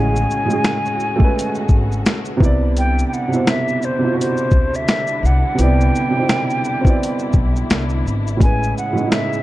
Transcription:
0.00 0.24 A1 medium
0.00 0.35 A2 medium
0.00 2.36 C#3 medium
0.00 0.48 G#3 medium
0.00 1.16 A3 medium
0.00 0.51 C#4 medium
0.00 2.36 C#4 medium
0.00 2.38 F#4 medium
0.00 0.39 G#4 medium
0.00 2.36 G#4 medium
0.00 2.42 C#5 medium
0.00 2.07 G#5 loud
0.16 shaker medium
0.31 shaker soft
0.45 1.01 A2 medium
0.45 1.03 G#3 medium
0.50 1.04 C#4 medium
0.50 1.05 G#4 medium
0.50 shaker soft
0.64 finger snap medium
0.64 snare loud
0.64 closed hi-hat medium
0.64 shaker medium
0.86 shaker soft
1.00 shaker soft
1.16 2.31 G#3 medium
1.16 2.30 A3 medium
1.20 2.32 C#4 medium
1.20 kick medium
1.24 2.34 B4 loud
1.39 closed hi-hat medium
1.39 shaker medium
1.55 shaker soft
1.69 2.00 G#1 medium
1.69 kick medium
1.69 shaker soft
1.92 shaker soft
2.06 finger snap medium
2.06 snare loud
2.06 closed hi-hat medium
2.06 shaker medium
2.25 shaker soft
2.37 3.01 C2 medium
2.37 3.09 C3 medium
2.37 8.36 D3 medium
2.37 8.36 G3 medium
2.37 3.11 B3 medium
2.37 8.36 D4 medium
2.37 9.43 E4 medium
2.37 kick loud
2.42 3.12 E4 medium
2.42 3.13 D5 loud
2.42 shaker soft
2.77 3.05 G5 loud
2.77 closed hi-hat medium
2.77 shaker medium
2.99 shaker medium
3.08 3.15 G5 medium
3.13 3.51 F#5 loud
3.13 shaker medium
3.28 3.85 B2 medium
3.28 3.84 C3 medium
3.33 3.87 E4 medium
3.33 3.88 C5 medium
3.33 shaker soft
3.47 3.86 E5 loud
3.47 finger snap medium
3.47 snare loud
3.47 closed hi-hat medium
3.47 shaker medium
3.68 shaker soft
3.82 4.19 C5 loud
3.82 shaker medium
3.99 5.14 B2 medium
3.99 5.12 C3 medium
4.04 5.15 E4 medium
4.04 4.10 F4 medium
4.13 5.20 F#4 medium
4.20 4.77 C5 loud
4.20 closed hi-hat medium
4.20 shaker medium
4.37 shaker soft
4.51 4.82 D2 medium
4.51 kick loud
4.51 shaker soft
4.74 5.27 E5 loud
4.74 shaker soft
4.88 finger snap medium
4.88 snare loud
4.88 closed hi-hat medium
4.88 shaker medium
5.07 shaker soft
5.23 5.41 C2 medium
5.23 5.62 F#5 medium
5.23 shaker soft
5.54 6.00 C3 medium
5.54 6.01 B3 medium
5.59 5.89 C2 loud
5.59 6.03 E4 medium
5.59 7.71 G5 loud
5.59 closed hi-hat medium
5.59 shaker medium
5.63 6.04 D5 medium
5.81 shaker medium
5.95 shaker soft
6.11 6.68 B2 medium
6.11 6.66 C3 medium
6.16 6.20 D#4 medium
6.16 6.70 C5 medium
6.22 6.72 E4 medium
6.29 finger snap medium
6.29 snare loud
6.29 closed hi-hat medium
6.29 shaker medium
6.50 shaker soft
6.65 shaker soft
6.81 7.96 B3 medium
6.81 7.95 C4 medium
6.81 kick loud
6.86 7.97 E4 medium
6.86 7.99 D5 medium
6.86 shaker soft
7.03 closed hi-hat medium
7.03 shaker medium
7.19 shaker soft
7.33 7.65 B1 medium
7.33 kick loud
7.33 shaker soft
7.56 shaker soft
7.70 8.01 C2 medium
7.70 finger snap medium
7.70 snare loud
7.70 closed hi-hat medium
7.70 shaker medium
7.90 shaker soft
8.06 8.36 G#1 medium
8.06 shaker soft
8.27 shaker soft
8.37 8.71 A1 medium
8.37 8.82 A2 medium
8.37 9.43 C#3 medium
8.37 8.84 G#3 medium
8.37 9.43 B3 medium
8.37 9.43 G#4 medium
8.37 kick loud
8.41 8.85 C#4 medium
8.41 8.86 B4 medium
8.41 8.75 G#5 loud
8.41 closed hi-hat medium
8.41 shaker medium
8.63 shaker soft
8.78 9.10 F#5 medium
8.78 shaker medium
8.93 9.43 A2 medium
8.93 9.43 G#3 medium
8.97 9.43 C#4 medium
8.97 9.04 D#4 medium
8.97 shaker soft
9.07 9.43 E4 medium
9.12 9.43 E5 loud
9.12 finger snap medium
9.12 snare loud
9.12 closed hi-hat medium
9.12 shaker medium
9.33 shaker soft

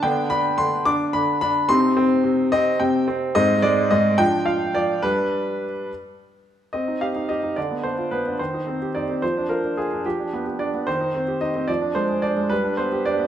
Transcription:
0.03 0.57 D3 medium
0.03 1.65 B3 soft
0.03 0.29 D4 soft
0.03 0.31 G5 medium
0.30 0.85 D4 medium
0.30 0.59 B5 medium
0.58 1.13 D3 medium
0.58 0.86 C6 medium
0.85 1.41 D4 medium
0.85 1.14 D6 loud
1.13 1.68 D3 soft
1.13 1.40 B5 medium
1.41 1.69 D4 medium
1.41 1.69 B5 medium
1.69 2.23 C3 medium
1.69 1.95 C4 medium
1.69 3.32 D#4 medium
1.69 2.52 C6 loud
1.97 2.51 C4 medium
2.24 2.79 C3 medium
2.52 3.06 C4 medium
2.52 2.80 D#5 loud
2.80 3.34 C3 medium
2.80 3.08 G5 medium
3.08 3.34 C4 medium
3.35 3.90 G#2 medium
3.35 4.15 C4 soft
3.35 4.15 D#4 medium
3.35 3.63 D#5 loud
3.62 4.17 G#3 medium
3.62 3.91 D5 medium
3.91 4.18 G#2 medium
3.91 4.19 D#5 medium
4.18 4.74 F3 medium
4.18 5.00 D4 soft
4.18 4.47 G5 loud
4.46 5.02 F4 medium
4.46 4.75 F5 medium
4.75 5.03 F3 soft
4.75 5.03 D5 medium
5.02 5.63 G3 medium
5.02 5.72 D4 soft
5.02 5.89 B4 medium
6.73 7.55 C4 soft
6.73 7.01 D#5 medium
6.88 7.10 D#4 soft
7.01 7.24 G4 soft
7.01 7.29 F5 medium
7.16 7.38 D#4 soft
7.29 7.52 G4 soft
7.29 7.57 D#5 medium
7.43 7.57 D#4 soft
7.56 8.38 D3 soft
7.56 7.84 D5 medium
7.71 7.93 B3 soft
7.83 8.07 D4 soft
7.83 8.12 C5 medium
7.98 8.20 F4 soft
8.11 8.34 B3 soft
8.11 8.39 B4 medium
8.27 8.40 D4 soft
8.39 9.20 D#3 soft
8.39 8.95 C5 medium
8.54 8.76 D#4 soft
8.67 8.89 C4 soft
8.82 9.04 G4 soft
8.95 9.17 D#4 soft
8.95 9.22 D5 medium
9.09 9.23 C4 soft
9.22 10.03 F3 soft
9.22 9.50 C5 medium
9.37 9.59 D4 soft
9.49 9.72 F4 soft
9.49 9.77 A#4 soft
9.64 9.86 D4 soft
9.77 10.00 F4 soft
9.77 10.05 G#4 medium
9.93 10.06 D4 soft
10.06 10.86 F3 soft
10.06 10.45 G4 medium
10.19 10.41 D4 soft
10.33 10.55 B3 soft
10.46 10.68 G4 soft
10.59 10.82 D4 soft
10.59 10.87 D5 medium
10.74 10.88 B3 soft
10.87 11.67 D#3 soft
10.87 11.42 C5 medium
11.01 11.23 D#4 soft
11.14 11.36 C4 soft
11.28 11.50 G4 soft
11.41 11.63 D#4 soft
11.41 11.69 D#5 medium
11.56 11.69 C4 soft
11.68 12.48 F3 soft
11.68 11.96 D5 medium
11.82 12.04 D4 soft
11.95 12.18 G#3 soft
11.95 12.23 C5 medium
12.09 12.31 G#4 soft
12.22 12.45 D4 soft
12.22 12.50 D5 medium
12.37 12.51 G#3 soft
12.49 13.27 G3 soft
12.49 12.78 B4 medium
12.64 12.86 D4 soft
12.77 13.00 B3 soft
12.77 13.05 C5 medium
12.92 13.14 G4 soft
13.05 13.27 D4 soft
13.05 13.27 D5 medium
13.19 13.27 B3 soft

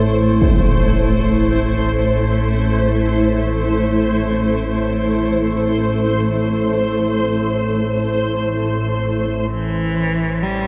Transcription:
0.00 9.49 A1 medium
0.00 9.49 A2 medium
0.00 9.51 A3 medium
0.00 10.67 E4 medium
0.00 10.67 A4 medium
0.00 9.54 C5 medium
0.00 10.67 C5 medium
0.42 impact medium
9.50 10.67 A1 medium
9.50 10.67 A2 medium
9.50 10.44 E3 medium
9.50 10.67 D4 medium
9.50 10.67 A4 medium
10.42 10.67 G3 medium

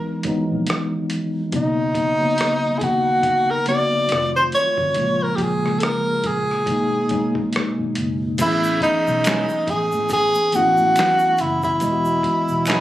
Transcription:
0.00 0.29 E3 medium
0.00 0.24 F#3 medium
0.00 0.25 G#3 medium
0.00 0.27 B3 medium
0.00 0.28 D#4 medium
0.00 0.25 A#4 loud
0.23 0.31 D#3 medium
0.23 1.22 F#3 medium
0.23 1.23 G#3 medium
0.23 1.23 B3 medium
0.23 muted fingered electric bass stroke soft
0.23 kick medium
0.23 closed hi-hat medium
0.28 1.25 E3 medium
0.28 1.24 D#4 medium
0.52 0.67 A#1 medium
0.67 cross-stick loud
0.67 closed hi-hat medium
1.10 closed hi-hat medium
1.51 2.17 B1 loud
1.51 2.01 C#3 medium
1.51 2.01 F#3 medium
1.51 2.02 A#3 medium
1.51 2.03 B3 medium
1.51 kick medium
1.51 closed hi-hat medium
1.56 2.79 D#4 medium
1.56 2.03 D#4 medium
1.95 kick medium
1.95 closed hi-hat medium
2.18 3.30 C#3 medium
2.18 3.30 F#3 medium
2.18 3.31 A#3 medium
2.18 3.31 B3 medium
2.22 3.32 D#4 medium
2.22 muted fingered electric bass stroke soft
2.38 cross-stick loud
2.38 closed hi-hat medium
2.66 muted fingered electric bass stroke soft
2.78 2.85 G#4 medium
2.78 kick medium
2.78 closed hi-hat medium
2.82 3.88 D#2 medium
2.82 3.52 F#4 medium
3.23 kick medium
3.23 closed hi-hat medium
3.50 3.68 A#4 medium
3.65 4.09 C#3 medium
3.65 4.08 F#3 medium
3.65 4.10 A#3 medium
3.65 4.11 B3 medium
3.65 4.31 D5 loud
3.65 closed hi-hat medium
3.70 4.11 F#4 medium
4.08 4.51 F1 medium
4.08 4.80 D#3 medium
4.08 4.80 F#3 medium
4.08 4.81 A3 medium
4.08 4.82 C4 medium
4.08 cross-stick loud
4.08 closed hi-hat medium
4.13 4.82 F4 medium
4.36 4.44 C5 medium
4.52 5.24 C#5 medium
4.52 closed hi-hat medium
4.78 4.95 G1 medium
4.78 kick medium
4.94 5.36 A#1 loud
4.94 5.44 C#3 medium
4.94 5.45 F3 medium
4.94 5.45 G#3 medium
4.94 5.46 A#3 medium
4.94 kick medium
4.94 closed hi-hat medium
5.00 5.47 F4 medium
5.23 5.37 A#4 medium
5.36 5.78 A#1 medium
5.36 5.44 G4 medium
5.36 kick medium
5.36 closed hi-hat medium
5.42 5.81 G#4 medium
5.62 6.67 C#3 medium
5.62 6.68 F3 medium
5.62 6.67 G#3 medium
5.62 6.68 A#3 medium
5.62 cross-stick soft
5.67 6.69 G#4 medium
5.79 5.85 A4 medium
5.79 closed hi-hat medium
5.83 6.28 A#4 medium
5.83 cross-stick loud
6.24 6.64 A#1 medium
6.24 7.54 G#4 medium
6.24 kick medium
6.24 closed hi-hat medium
6.51 cross-stick soft
6.66 7.07 G#1 medium
6.66 7.02 B2 medium
6.66 7.02 F#3 medium
6.66 7.03 G#3 medium
6.66 7.03 A#3 medium
6.66 kick medium
6.66 closed hi-hat medium
6.70 7.04 D#4 medium
7.09 7.74 B1 medium
7.09 8.07 B2 medium
7.09 8.08 F#3 medium
7.09 8.09 G#3 medium
7.09 8.09 A#3 medium
7.09 kick medium
7.09 closed hi-hat medium
7.13 8.10 D#4 medium
7.35 kick medium
7.53 cross-stick loud
7.53 closed hi-hat medium
7.79 7.97 G#1 medium
7.95 8.36 F#1 medium
7.95 closed hi-hat medium
8.38 8.79 A1 loud
8.38 9.67 E3 medium
8.38 9.68 A3 medium
8.38 9.68 B3 medium
8.38 9.69 C#4 medium
8.38 kick medium
8.38 closed hi-hat medium
8.38 crash medium
8.38 shaker medium
8.42 8.80 E4 medium
8.42 9.69 G#4 medium
8.64 shaker soft
8.81 9.72 D#4 medium
8.81 kick medium
8.81 closed hi-hat medium
9.07 9.46 B1 medium
9.07 shaker soft
9.24 9.44 G#3 medium
9.24 9.44 C#4 medium
9.24 9.45 E4 medium
9.24 9.45 G#4 medium
9.24 finger snap medium
9.24 snare loud
9.24 closed hi-hat medium
9.24 shaker medium
9.28 finger snap medium
9.49 shaker soft
9.67 9.90 A1 medium
9.67 10.11 G#4 medium
9.67 kick medium
9.67 closed hi-hat medium
9.92 10.32 A2 medium
9.92 shaker soft
10.09 10.57 G#4 loud
10.09 kick medium
10.09 closed hi-hat medium
10.09 shaker medium
10.35 shaker medium
10.52 10.77 A1 medium
10.52 11.50 E3 medium
10.52 11.51 A3 medium
10.52 11.52 B3 medium
10.52 11.52 C#4 medium
10.52 11.42 F#4 medium
10.52 closed hi-hat medium
10.52 shaker soft
10.56 11.53 E4 medium
10.77 10.96 A2 medium
10.77 shaker soft
10.96 finger snap medium
10.96 snare loud
10.96 closed hi-hat medium
10.96 shaker medium
11.00 finger snap medium
11.19 shaker soft
11.38 11.79 F#1 medium
11.38 11.63 E4 medium
11.38 closed hi-hat medium
11.38 shaker soft
11.63 12.80 E4 medium
11.63 kick medium
11.63 shaker soft
11.80 12.22 E1 loud
11.80 12.80 E3 medium
11.80 12.80 G#3 medium
11.80 12.80 B3 medium
11.80 12.80 D#5 medium
11.80 kick medium
11.80 closed hi-hat medium
11.80 shaker medium
11.85 11.91 E4 medium
11.92 12.80 F#4 medium
12.05 shaker soft
12.23 kick medium
12.23 closed hi-hat medium
12.48 12.80 E1 medium
12.48 shaker soft
12.66 12.80 F#3 medium
12.66 12.80 B3 medium
12.66 12.80 D#4 medium
12.66 12.80 G#4 medium
12.66 finger snap medium
12.66 closed hi-hat medium
12.66 shaker medium
12.70 finger snap medium
12.70 snare loud

